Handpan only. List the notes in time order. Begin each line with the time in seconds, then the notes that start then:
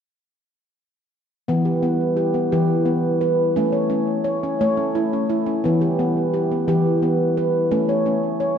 1.48 E3 B3
1.65 G4
1.83 B3
2.17 G4
2.34 B3
2.52 E3 G4
2.85 B3
3.21 B4
3.56 A3 C#4
3.72 C#5
3.90 C#4
4.24 C#5
4.43 C#4
4.61 A3 C#5
4.77 C#4
4.95 E4
5.13 C#4
5.29 E4
5.46 C#4
5.64 E3 B3
5.81 G4
5.99 B3
6.34 G4
6.51 B3
6.68 E3 G4
7.02 B3
7.37 B4
7.71 A3 C#4
7.89 C#5
8.06 C#4
8.40 C#5